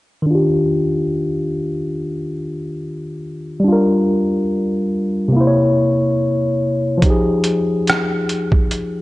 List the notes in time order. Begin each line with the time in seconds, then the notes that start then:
0.22 D#3
0.26 D4
0.30 F4
0.35 G4
3.60 G3
3.64 D4
3.68 F4
3.73 A#4
5.28 C3
5.32 A#3
5.36 E4
5.41 C5
5.47 C#5
6.98 F3
7.02 D#4, kick, closed hi-hat
7.06 G4
7.10 G#4
7.44 closed hi-hat
7.87 cross-stick, closed hi-hat
8.29 closed hi-hat
8.52 kick
8.71 closed hi-hat